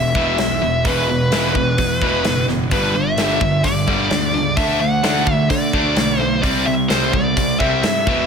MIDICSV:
0, 0, Header, 1, 5, 480
1, 0, Start_track
1, 0, Tempo, 465839
1, 878, Time_signature, 4, 2, 24, 8
1, 8515, End_track
2, 0, Start_track
2, 0, Title_t, "Lead electric guitar"
2, 0, Program_c, 0, 29
2, 0, Note_on_c, 0, 76, 109
2, 897, Note_on_c, 0, 71, 67
2, 917, Note_off_c, 0, 76, 0
2, 2524, Note_off_c, 0, 71, 0
2, 2810, Note_on_c, 0, 71, 85
2, 3026, Note_off_c, 0, 71, 0
2, 3039, Note_on_c, 0, 76, 94
2, 3748, Note_on_c, 0, 74, 91
2, 3777, Note_off_c, 0, 76, 0
2, 4705, Note_on_c, 0, 76, 88
2, 4737, Note_off_c, 0, 74, 0
2, 4931, Note_off_c, 0, 76, 0
2, 4952, Note_on_c, 0, 78, 105
2, 5508, Note_off_c, 0, 78, 0
2, 5508, Note_on_c, 0, 76, 105
2, 5664, Note_off_c, 0, 76, 0
2, 5668, Note_on_c, 0, 74, 95
2, 6369, Note_off_c, 0, 74, 0
2, 6369, Note_on_c, 0, 72, 95
2, 6612, Note_off_c, 0, 72, 0
2, 6625, Note_on_c, 0, 74, 90
2, 6861, Note_off_c, 0, 74, 0
2, 6865, Note_on_c, 0, 76, 92
2, 6931, Note_off_c, 0, 76, 0
2, 7106, Note_on_c, 0, 72, 89
2, 7332, Note_off_c, 0, 72, 0
2, 7345, Note_on_c, 0, 74, 84
2, 7823, Note_off_c, 0, 74, 0
2, 7827, Note_on_c, 0, 76, 92
2, 8511, Note_off_c, 0, 76, 0
2, 8515, End_track
3, 0, Start_track
3, 0, Title_t, "Overdriven electric guitar"
3, 0, Program_c, 1, 29
3, 0, Note_on_c, 1, 40, 68
3, 0, Note_on_c, 1, 47, 71
3, 130, Note_off_c, 1, 40, 0
3, 134, Note_off_c, 1, 47, 0
3, 160, Note_on_c, 1, 40, 83
3, 164, Note_on_c, 1, 47, 97
3, 170, Note_on_c, 1, 52, 92
3, 385, Note_off_c, 1, 40, 0
3, 387, Note_off_c, 1, 47, 0
3, 389, Note_off_c, 1, 52, 0
3, 399, Note_on_c, 1, 40, 67
3, 403, Note_on_c, 1, 47, 74
3, 615, Note_off_c, 1, 40, 0
3, 616, Note_off_c, 1, 47, 0
3, 637, Note_on_c, 1, 40, 60
3, 639, Note_on_c, 1, 47, 80
3, 853, Note_off_c, 1, 40, 0
3, 854, Note_off_c, 1, 47, 0
3, 881, Note_on_c, 1, 40, 77
3, 886, Note_on_c, 1, 47, 86
3, 890, Note_on_c, 1, 52, 87
3, 1105, Note_off_c, 1, 40, 0
3, 1108, Note_off_c, 1, 47, 0
3, 1110, Note_off_c, 1, 52, 0
3, 1129, Note_on_c, 1, 40, 63
3, 1131, Note_on_c, 1, 47, 83
3, 1340, Note_off_c, 1, 40, 0
3, 1341, Note_off_c, 1, 47, 0
3, 1364, Note_on_c, 1, 40, 81
3, 1364, Note_on_c, 1, 47, 97
3, 1372, Note_on_c, 1, 52, 90
3, 1581, Note_off_c, 1, 40, 0
3, 1587, Note_off_c, 1, 47, 0
3, 1591, Note_off_c, 1, 52, 0
3, 1594, Note_on_c, 1, 40, 65
3, 1599, Note_on_c, 1, 47, 70
3, 1811, Note_off_c, 1, 40, 0
3, 1814, Note_off_c, 1, 47, 0
3, 1840, Note_on_c, 1, 40, 64
3, 1842, Note_on_c, 1, 47, 76
3, 2054, Note_off_c, 1, 40, 0
3, 2055, Note_off_c, 1, 47, 0
3, 2083, Note_on_c, 1, 40, 82
3, 2086, Note_on_c, 1, 47, 86
3, 2089, Note_on_c, 1, 52, 83
3, 2305, Note_off_c, 1, 40, 0
3, 2307, Note_off_c, 1, 47, 0
3, 2308, Note_off_c, 1, 52, 0
3, 2322, Note_on_c, 1, 40, 68
3, 2323, Note_on_c, 1, 47, 67
3, 2535, Note_off_c, 1, 40, 0
3, 2536, Note_off_c, 1, 47, 0
3, 2560, Note_on_c, 1, 40, 67
3, 2562, Note_on_c, 1, 47, 71
3, 2773, Note_off_c, 1, 40, 0
3, 2775, Note_off_c, 1, 47, 0
3, 2801, Note_on_c, 1, 43, 81
3, 2806, Note_on_c, 1, 50, 92
3, 2806, Note_on_c, 1, 55, 88
3, 3023, Note_off_c, 1, 43, 0
3, 3026, Note_off_c, 1, 50, 0
3, 3026, Note_off_c, 1, 55, 0
3, 3042, Note_on_c, 1, 43, 72
3, 3044, Note_on_c, 1, 50, 77
3, 3254, Note_off_c, 1, 43, 0
3, 3255, Note_off_c, 1, 50, 0
3, 3280, Note_on_c, 1, 43, 83
3, 3284, Note_on_c, 1, 50, 87
3, 3285, Note_on_c, 1, 55, 100
3, 3502, Note_off_c, 1, 43, 0
3, 3504, Note_off_c, 1, 50, 0
3, 3505, Note_off_c, 1, 55, 0
3, 3515, Note_on_c, 1, 43, 65
3, 3522, Note_on_c, 1, 50, 69
3, 3730, Note_off_c, 1, 43, 0
3, 3733, Note_off_c, 1, 50, 0
3, 3754, Note_on_c, 1, 43, 72
3, 3758, Note_on_c, 1, 50, 68
3, 3969, Note_off_c, 1, 43, 0
3, 3971, Note_off_c, 1, 50, 0
3, 3991, Note_on_c, 1, 43, 94
3, 3993, Note_on_c, 1, 50, 92
3, 3997, Note_on_c, 1, 55, 101
3, 4214, Note_off_c, 1, 43, 0
3, 4218, Note_off_c, 1, 50, 0
3, 4220, Note_off_c, 1, 55, 0
3, 4227, Note_on_c, 1, 43, 67
3, 4231, Note_on_c, 1, 50, 74
3, 4445, Note_off_c, 1, 43, 0
3, 4447, Note_off_c, 1, 50, 0
3, 4469, Note_on_c, 1, 43, 65
3, 4475, Note_on_c, 1, 50, 71
3, 4686, Note_off_c, 1, 43, 0
3, 4689, Note_off_c, 1, 50, 0
3, 4707, Note_on_c, 1, 50, 86
3, 4712, Note_on_c, 1, 57, 96
3, 4718, Note_on_c, 1, 62, 100
3, 4934, Note_off_c, 1, 50, 0
3, 4937, Note_off_c, 1, 57, 0
3, 4940, Note_off_c, 1, 62, 0
3, 4949, Note_on_c, 1, 50, 75
3, 4954, Note_on_c, 1, 57, 86
3, 5166, Note_off_c, 1, 50, 0
3, 5168, Note_off_c, 1, 57, 0
3, 5186, Note_on_c, 1, 50, 84
3, 5193, Note_on_c, 1, 57, 90
3, 5199, Note_on_c, 1, 62, 100
3, 5414, Note_off_c, 1, 50, 0
3, 5417, Note_off_c, 1, 57, 0
3, 5420, Note_off_c, 1, 62, 0
3, 5433, Note_on_c, 1, 50, 65
3, 5434, Note_on_c, 1, 57, 68
3, 5647, Note_off_c, 1, 50, 0
3, 5648, Note_off_c, 1, 57, 0
3, 5668, Note_on_c, 1, 50, 64
3, 5674, Note_on_c, 1, 57, 78
3, 5885, Note_off_c, 1, 50, 0
3, 5888, Note_off_c, 1, 57, 0
3, 5913, Note_on_c, 1, 50, 82
3, 5916, Note_on_c, 1, 57, 84
3, 5923, Note_on_c, 1, 62, 92
3, 6137, Note_off_c, 1, 50, 0
3, 6139, Note_off_c, 1, 57, 0
3, 6142, Note_off_c, 1, 62, 0
3, 6150, Note_on_c, 1, 50, 77
3, 6151, Note_on_c, 1, 57, 93
3, 6366, Note_off_c, 1, 50, 0
3, 6367, Note_off_c, 1, 57, 0
3, 6386, Note_on_c, 1, 50, 66
3, 6397, Note_on_c, 1, 57, 81
3, 6604, Note_off_c, 1, 50, 0
3, 6610, Note_off_c, 1, 57, 0
3, 6627, Note_on_c, 1, 48, 84
3, 6636, Note_on_c, 1, 55, 95
3, 6638, Note_on_c, 1, 60, 95
3, 6855, Note_off_c, 1, 48, 0
3, 6859, Note_off_c, 1, 55, 0
3, 6860, Note_off_c, 1, 60, 0
3, 6867, Note_on_c, 1, 48, 73
3, 6874, Note_on_c, 1, 55, 77
3, 7085, Note_off_c, 1, 48, 0
3, 7089, Note_off_c, 1, 55, 0
3, 7111, Note_on_c, 1, 48, 96
3, 7114, Note_on_c, 1, 55, 91
3, 7116, Note_on_c, 1, 60, 99
3, 7337, Note_off_c, 1, 48, 0
3, 7339, Note_off_c, 1, 55, 0
3, 7340, Note_off_c, 1, 60, 0
3, 7357, Note_on_c, 1, 48, 59
3, 7359, Note_on_c, 1, 55, 64
3, 7571, Note_off_c, 1, 48, 0
3, 7572, Note_off_c, 1, 55, 0
3, 7604, Note_on_c, 1, 48, 59
3, 7607, Note_on_c, 1, 55, 72
3, 7815, Note_off_c, 1, 48, 0
3, 7816, Note_off_c, 1, 55, 0
3, 7840, Note_on_c, 1, 48, 89
3, 7844, Note_on_c, 1, 55, 90
3, 7849, Note_on_c, 1, 60, 88
3, 8060, Note_off_c, 1, 48, 0
3, 8065, Note_off_c, 1, 55, 0
3, 8068, Note_off_c, 1, 60, 0
3, 8073, Note_on_c, 1, 48, 62
3, 8078, Note_on_c, 1, 55, 83
3, 8290, Note_off_c, 1, 48, 0
3, 8292, Note_off_c, 1, 55, 0
3, 8312, Note_on_c, 1, 40, 85
3, 8316, Note_on_c, 1, 47, 83
3, 8323, Note_on_c, 1, 52, 87
3, 8515, Note_off_c, 1, 40, 0
3, 8515, Note_off_c, 1, 47, 0
3, 8515, Note_off_c, 1, 52, 0
3, 8515, End_track
4, 0, Start_track
4, 0, Title_t, "Picked electric bass"
4, 0, Program_c, 2, 34
4, 0, Note_on_c, 2, 28, 86
4, 146, Note_off_c, 2, 28, 0
4, 153, Note_on_c, 2, 28, 83
4, 386, Note_off_c, 2, 28, 0
4, 396, Note_on_c, 2, 35, 97
4, 627, Note_off_c, 2, 35, 0
4, 637, Note_on_c, 2, 28, 86
4, 868, Note_off_c, 2, 28, 0
4, 877, Note_on_c, 2, 28, 89
4, 1338, Note_off_c, 2, 28, 0
4, 1362, Note_on_c, 2, 28, 80
4, 1820, Note_off_c, 2, 28, 0
4, 1841, Note_on_c, 2, 40, 100
4, 2069, Note_off_c, 2, 40, 0
4, 2077, Note_on_c, 2, 28, 77
4, 2307, Note_off_c, 2, 28, 0
4, 2317, Note_on_c, 2, 30, 98
4, 2776, Note_off_c, 2, 30, 0
4, 2797, Note_on_c, 2, 31, 76
4, 3026, Note_off_c, 2, 31, 0
4, 3038, Note_on_c, 2, 31, 88
4, 3266, Note_off_c, 2, 31, 0
4, 3274, Note_on_c, 2, 31, 75
4, 3504, Note_off_c, 2, 31, 0
4, 3514, Note_on_c, 2, 31, 91
4, 3743, Note_off_c, 2, 31, 0
4, 3755, Note_on_c, 2, 31, 95
4, 3984, Note_off_c, 2, 31, 0
4, 3997, Note_on_c, 2, 31, 89
4, 4225, Note_off_c, 2, 31, 0
4, 4235, Note_on_c, 2, 38, 97
4, 4463, Note_off_c, 2, 38, 0
4, 4472, Note_on_c, 2, 37, 84
4, 4701, Note_off_c, 2, 37, 0
4, 4708, Note_on_c, 2, 38, 85
4, 5169, Note_off_c, 2, 38, 0
4, 5190, Note_on_c, 2, 38, 80
4, 5650, Note_off_c, 2, 38, 0
4, 5669, Note_on_c, 2, 50, 103
4, 5900, Note_off_c, 2, 50, 0
4, 5907, Note_on_c, 2, 38, 89
4, 6139, Note_off_c, 2, 38, 0
4, 6143, Note_on_c, 2, 35, 91
4, 6607, Note_off_c, 2, 35, 0
4, 6630, Note_on_c, 2, 36, 92
4, 6861, Note_off_c, 2, 36, 0
4, 6874, Note_on_c, 2, 36, 82
4, 7103, Note_off_c, 2, 36, 0
4, 7113, Note_on_c, 2, 36, 92
4, 7342, Note_off_c, 2, 36, 0
4, 7350, Note_on_c, 2, 36, 92
4, 7581, Note_off_c, 2, 36, 0
4, 7595, Note_on_c, 2, 36, 90
4, 7824, Note_off_c, 2, 36, 0
4, 7834, Note_on_c, 2, 36, 83
4, 8064, Note_off_c, 2, 36, 0
4, 8072, Note_on_c, 2, 43, 93
4, 8304, Note_off_c, 2, 43, 0
4, 8313, Note_on_c, 2, 28, 81
4, 8515, Note_off_c, 2, 28, 0
4, 8515, End_track
5, 0, Start_track
5, 0, Title_t, "Drums"
5, 155, Note_on_c, 9, 36, 92
5, 258, Note_off_c, 9, 36, 0
5, 395, Note_on_c, 9, 46, 56
5, 401, Note_on_c, 9, 38, 98
5, 498, Note_off_c, 9, 46, 0
5, 504, Note_off_c, 9, 38, 0
5, 875, Note_on_c, 9, 46, 56
5, 876, Note_on_c, 9, 36, 111
5, 978, Note_off_c, 9, 46, 0
5, 979, Note_off_c, 9, 36, 0
5, 1359, Note_on_c, 9, 46, 58
5, 1366, Note_on_c, 9, 38, 104
5, 1462, Note_off_c, 9, 46, 0
5, 1469, Note_off_c, 9, 38, 0
5, 1599, Note_on_c, 9, 36, 85
5, 1702, Note_off_c, 9, 36, 0
5, 1835, Note_on_c, 9, 46, 54
5, 1838, Note_on_c, 9, 36, 77
5, 1938, Note_off_c, 9, 46, 0
5, 1941, Note_off_c, 9, 36, 0
5, 2077, Note_on_c, 9, 36, 83
5, 2180, Note_off_c, 9, 36, 0
5, 2314, Note_on_c, 9, 46, 56
5, 2320, Note_on_c, 9, 38, 105
5, 2417, Note_off_c, 9, 46, 0
5, 2423, Note_off_c, 9, 38, 0
5, 2562, Note_on_c, 9, 38, 25
5, 2665, Note_off_c, 9, 38, 0
5, 2793, Note_on_c, 9, 46, 52
5, 2797, Note_on_c, 9, 36, 106
5, 2896, Note_off_c, 9, 46, 0
5, 2900, Note_off_c, 9, 36, 0
5, 3273, Note_on_c, 9, 46, 56
5, 3279, Note_on_c, 9, 38, 109
5, 3376, Note_off_c, 9, 46, 0
5, 3382, Note_off_c, 9, 38, 0
5, 3514, Note_on_c, 9, 36, 91
5, 3617, Note_off_c, 9, 36, 0
5, 3751, Note_on_c, 9, 46, 55
5, 3754, Note_on_c, 9, 36, 80
5, 3854, Note_off_c, 9, 46, 0
5, 3857, Note_off_c, 9, 36, 0
5, 3995, Note_on_c, 9, 36, 76
5, 4098, Note_off_c, 9, 36, 0
5, 4231, Note_on_c, 9, 46, 48
5, 4238, Note_on_c, 9, 38, 105
5, 4334, Note_off_c, 9, 46, 0
5, 4341, Note_off_c, 9, 38, 0
5, 4708, Note_on_c, 9, 46, 49
5, 4709, Note_on_c, 9, 36, 110
5, 4811, Note_off_c, 9, 46, 0
5, 4812, Note_off_c, 9, 36, 0
5, 5190, Note_on_c, 9, 46, 53
5, 5196, Note_on_c, 9, 38, 113
5, 5293, Note_off_c, 9, 46, 0
5, 5299, Note_off_c, 9, 38, 0
5, 5429, Note_on_c, 9, 36, 92
5, 5532, Note_off_c, 9, 36, 0
5, 5667, Note_on_c, 9, 46, 53
5, 5668, Note_on_c, 9, 36, 83
5, 5770, Note_off_c, 9, 46, 0
5, 5771, Note_off_c, 9, 36, 0
5, 5908, Note_on_c, 9, 36, 90
5, 6011, Note_off_c, 9, 36, 0
5, 6146, Note_on_c, 9, 46, 63
5, 6152, Note_on_c, 9, 38, 102
5, 6249, Note_off_c, 9, 46, 0
5, 6255, Note_off_c, 9, 38, 0
5, 6631, Note_on_c, 9, 36, 99
5, 6631, Note_on_c, 9, 46, 54
5, 6734, Note_off_c, 9, 36, 0
5, 6734, Note_off_c, 9, 46, 0
5, 7111, Note_on_c, 9, 46, 57
5, 7117, Note_on_c, 9, 38, 106
5, 7214, Note_off_c, 9, 46, 0
5, 7220, Note_off_c, 9, 38, 0
5, 7351, Note_on_c, 9, 36, 86
5, 7455, Note_off_c, 9, 36, 0
5, 7593, Note_on_c, 9, 36, 86
5, 7593, Note_on_c, 9, 46, 57
5, 7696, Note_off_c, 9, 36, 0
5, 7696, Note_off_c, 9, 46, 0
5, 7833, Note_on_c, 9, 36, 87
5, 7936, Note_off_c, 9, 36, 0
5, 8072, Note_on_c, 9, 46, 52
5, 8078, Note_on_c, 9, 38, 111
5, 8175, Note_off_c, 9, 46, 0
5, 8181, Note_off_c, 9, 38, 0
5, 8314, Note_on_c, 9, 36, 95
5, 8418, Note_off_c, 9, 36, 0
5, 8515, End_track
0, 0, End_of_file